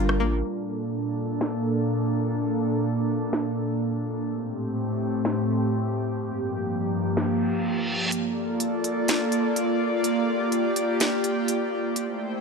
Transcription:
Already playing: G1 G3 A#3 D4 F4 G4 A#4
0.09 cross-stick
0.20 A1 A#3
0.44 A#2 A#3 D4 A4
1.41 snare
3.33 snare
4.28 A2 A3 C4 G4
5.25 snare
6.20 G2 F3 A#3
7.16 snare, reverse cymbal
8.12 A#3 F4 A4 D5, closed hi-hat
8.60 closed hi-hat
8.84 closed hi-hat
9.08 snare, closed hi-hat
9.32 closed hi-hat
9.56 closed hi-hat
10.04 G4, closed hi-hat
10.52 closed hi-hat
10.76 closed hi-hat
11.00 snare, closed hi-hat
11.24 closed hi-hat
11.48 closed hi-hat
11.96 A3 E4 C5 G5, closed hi-hat

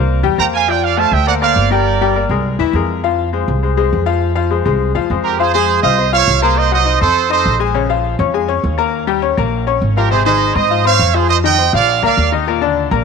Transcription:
Already playing: C2 A#3 A#4 C5
0.23 E2 G3 G4 G5
0.38 F2 A#3 A#4 C5 G5 A#5
0.54 F5 G#5
0.68 F3 F4 D5 F5 G5
0.84 D5 F5
0.97 A3 A4 C5 F5 A5
1.12 D2 E5 G5
1.27 A#3 A#4 C5 D5 F#5
1.41 A#3 A#4 C5 D5 F5
1.56 G1
1.71 G3 G4 A#4 D5 G5
2.01 G3 G4 G5
2.16 A#3 A#4 D5
2.29 C2 G#3 G#4 A#4
2.59 D#2 E3 E4 E5
2.73 F2 G#3 G#4 A#4
3.04 F3 F4 F5
3.33 G#3 G#4 C5
3.48 C2
3.63 G#3 G#4 C5
3.77 G#3 G#4 C5
3.93 F2
4.06 F3 F4 F5
4.35 F3 F4 F5
4.51 G#3 G#4 C5
4.65 C2 G#3 G#4 C5
4.95 D#2 F3 F4 F5
5.10 F2 G#3 G#4 C5
5.24 G4 A#4
5.39 F3 F4 G#4 C5 F5
5.53 G#3 G#4 C5 G#5
5.83 C2 F4 C5 D#5 F5 F6
5.98 C4 C5 C6
6.13 F4 C#5 F5 F6
6.28 C2
6.42 A#3 G#4 A#4 C5 A#5
6.58 C5 D#5
6.72 F#3 F#4 C5 D#5 F#5
6.85 D#4 D#5 D#6
7.00 F2 C4 A4 C5 C6
7.30 D#4 A4 C5 D#5 D#6
7.45 A#1
7.59 G#3 G#4 G#5
7.74 C#3 C#4 C#5
7.89 F3 F4 F5
8.19 F2 C#4 C#5 C#6
8.34 G#3 G#4 G#5
8.48 C#4 C#5 C#6
8.64 D#2
8.78 A#3 A#4 A#5
9.07 G3 G4 G5
9.22 C#4 C#5 C#6
9.37 A#1 A#3 A#4 A#5
9.67 C#4 C#5 C#6
9.82 G#1
9.96 F3 F4 G4 A#4 F5
10.11 C3 C4 G#4 C5
10.25 D#3 D#4 G#4 C5 D#5
10.55 G#2 C4 C5 D#5 C6
10.70 F3 F4 F5
10.85 C4 C5 C#5 F5 C6
10.99 F2
11.14 F3 F4 G#4 C5 F5
11.29 C5 D#5
11.44 D#3 D#4 D#5 G5
11.58 C4 C5 C6
11.73 A#1 F3 F4 D5 F5
12.03 D2 A#3 A#4 D5 F5 A#5
12.17 D#2
12.32 D#3 D#4 D#5
12.47 A#2 A#3 A#4
12.61 D3 D4 D5
12.91 A#1 A#3 A#4 A#5

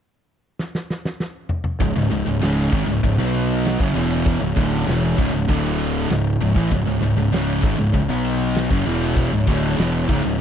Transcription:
0.59 snare
0.75 snare
0.90 snare
1.05 snare
1.20 snare
1.49 mid tom
1.64 mid tom
1.79 C#1 C#2 G#2 C#4 G#4 C#5, kick, ride
1.95 C#1 C#2 G#2
2.11 C#1 C#2 G#2, ride
2.26 C#1 C#2 G#2
2.41 C#1 C#2 G#2 C#3, snare, ride
2.72 G#1 G#2 D#3, kick, ride
2.88 C#1 C#2 G#2
3.03 C#1 C#2 G#2, kick, ride
3.18 B1 B2 F#3 B3 F#4
3.34 ride
3.65 snare, ride
3.79 F#1 F#2 C#3 C#4 G#4 C#5, kick
3.94 E1 E2 B2 E3, ride
4.26 kick, ride
4.41 C#1 C#2 G#2
4.56 D1 D2 A2 D3, kick, ride
4.87 E1 E2 B2 E3, snare, ride
5.18 C#1 C#2 G#2, kick, ride
5.33 C#1 C#2 G#2
5.48 D1 D2 A2 D3 D4 A4 E5, kick, ride
5.80 ride
6.09 C#1 C#2 G#2 C#4 G#4 C#5, snare, ride
6.40 C#1 C#2 G#2, ride
6.56 A1 A2 E3, kick
6.71 C#1 C#2 G#2, kick, ride
6.86 C#1 C#2 G#2
7.01 C#1 C#2 G#2, ride
7.17 C#1 C#2 G#2
7.32 C#1 C#2 G#2 C#3, snare, ride
7.63 G#1 G#2 D#3, kick, ride
7.79 C#1 C#2 G#2
7.94 C#1 C#2 G#2, kick, ride
8.08 B1 B2 F#3 B3 F#4 C#5
8.25 ride
8.55 snare, ride
8.70 F#1 F#2 C#3 C#4 G#4, kick
8.86 E1 E2 B2 E3, ride
9.17 kick, ride
9.32 C#1 C#2 G#2
9.47 D1 D2 A2 D3, kick, ride
9.78 E1 E2 B2 E3, snare, ride
10.08 C#1 C#2 G#2, kick, ride
10.25 C#1 C#2 G#2, snare

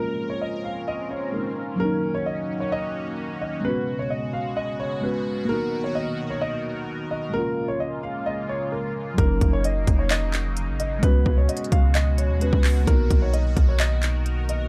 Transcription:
Already playing: G#3 A#3 C#4 F4 A#4, swell
0.00 F4
0.30 C#5
0.41 D#5
0.65 F5
0.88 D#5
1.11 C#5
1.32 G#3 A#3 C#4 A#4
1.36 D#4
1.76 F#3 A#3
1.80 D#3 A#3 C#4 F#4 A#4
1.84 D#4
2.15 C#5
2.26 D#5
2.60 C#5
2.72 D#5
3.41 D#5
3.60 G#3 B3
3.64 B2 C#3 G#3 C#4 F#4 B4
3.69 F#4
3.99 C#5
4.10 D#5
4.33 F5
4.57 D#5
4.80 C#5
5.01 G#3 B3 C#4 B4
5.05 F#4
5.45 A#3 B3
5.49 D#3 D#4 A#4
5.53 F#4
5.84 C#5
5.95 D#5
6.30 C#5
6.41 D#5
7.11 D#5
7.29 G#3 A#3
7.34 C#3 G#3 A#3 C#4 F4 A#4
7.38 F4
7.68 C#5
7.80 D#5
8.03 F5
8.26 D#5
8.49 C#5
8.72 A#4
9.14 F#3 A#3
9.18 F#1 C#3 F#3 A#3 C#4 D#4 A#4, kick, closed hi-hat
9.23 D#4
9.41 F#1, kick, closed hi-hat
9.53 C#5
9.64 D#5, closed hi-hat
9.87 F1, kick, closed hi-hat
9.99 C#5
10.10 D#5, clap, closed hi-hat
10.34 clap, closed hi-hat
10.57 closed hi-hat
10.68 G#1
10.80 D#5, closed hi-hat
10.98 G#3 B3
11.03 C#2 B2 G#3 C#4 F#4 B4, kick, closed hi-hat
11.07 F#4
11.26 C#2, kick
11.38 C#5
11.49 D#5, closed hi-hat
11.57 closed hi-hat
11.64 closed hi-hat
11.72 C#2 F5, kick, closed hi-hat
11.95 D#5, clap, closed hi-hat
12.18 C#5, closed hi-hat
12.30 D#2
12.39 G#3 B3 C#4 B4, closed hi-hat
12.44 F#4
12.53 C#2, kick
12.64 clap, open hi-hat
12.83 A#3 B3
12.87 B1 D#3 D#4 A#4, kick, closed hi-hat
12.92 F#4
13.10 B1, kick, closed hi-hat
13.22 C#5
13.33 D#5, closed hi-hat
13.57 B1, kick, closed hi-hat
13.69 C#5
13.80 D#5, clap, closed hi-hat
14.03 clap, closed hi-hat
14.26 closed hi-hat
14.49 D#5, closed hi-hat

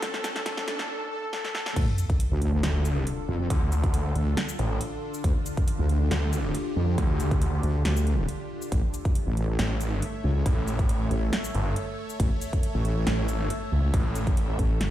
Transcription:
Already playing: A#2 A#3 D4 F4, riser
0.02 A4, kick, snare, closed hi-hat
0.14 snare
0.24 A4, snare, closed hi-hat, shaker
0.36 snare, closed hi-hat
0.46 A4, kick, snare, closed hi-hat
0.57 snare
0.68 A4, snare, closed hi-hat
0.79 snare
0.89 A4
1.11 A4
1.33 A4, snare
1.44 snare
1.55 A4, snare
1.66 snare
1.76 D2 D3 D4 F4 A4, kick, closed hi-hat, crash, sub drop
1.98 closed hi-hat, shaker
2.10 kick, closed hi-hat
2.20 closed hi-hat
2.31 D2
2.42 closed hi-hat
2.63 D2, snare, closed hi-hat
2.85 closed hi-hat, shaker
3.07 closed hi-hat
3.29 F2
3.50 D2, kick, closed hi-hat
3.72 closed hi-hat, shaker
3.84 kick, closed hi-hat
3.94 closed hi-hat
4.15 D2, closed hi-hat
4.37 snare, closed hi-hat
4.49 shaker
4.59 A1, closed hi-hat
4.81 closed hi-hat
5.14 shaker
5.24 D2 G4, kick, closed hi-hat
5.46 closed hi-hat, shaker
5.57 kick, closed hi-hat
5.68 closed hi-hat
5.79 D2
5.89 closed hi-hat
6.11 D2, snare, closed hi-hat
6.33 closed hi-hat, shaker
6.55 closed hi-hat
6.76 F2
6.98 D2, kick, closed hi-hat
7.20 closed hi-hat, shaker
7.31 kick, closed hi-hat
7.42 closed hi-hat
7.63 D2, closed hi-hat
7.85 D2, snare, closed hi-hat
7.97 shaker
8.07 closed hi-hat
8.29 closed hi-hat
8.62 shaker
8.72 A1 A3 A4 C#5 E5, kick, closed hi-hat
8.94 closed hi-hat, shaker
9.05 kick, closed hi-hat
9.15 closed hi-hat
9.27 A1
9.37 closed hi-hat
9.59 A1, snare, closed hi-hat
9.81 closed hi-hat, shaker
10.02 closed hi-hat
10.24 C#2
10.46 A1, kick, closed hi-hat
10.68 closed hi-hat, shaker
10.79 kick, closed hi-hat
10.89 closed hi-hat
11.11 A1, closed hi-hat
11.33 snare, closed hi-hat
11.44 shaker
11.55 G1, closed hi-hat
11.76 closed hi-hat
12.10 shaker
12.20 A1, kick, closed hi-hat
12.41 closed hi-hat, shaker
12.53 kick, closed hi-hat
12.63 closed hi-hat
12.75 A1
12.85 closed hi-hat
13.07 A1, snare, closed hi-hat
13.28 closed hi-hat, shaker
13.50 closed hi-hat
13.72 C#2
13.94 A1, kick, closed hi-hat
14.15 closed hi-hat, shaker
14.27 kick, closed hi-hat
14.37 closed hi-hat
14.59 A1, kick, closed hi-hat
14.81 G1, snare, closed hi-hat

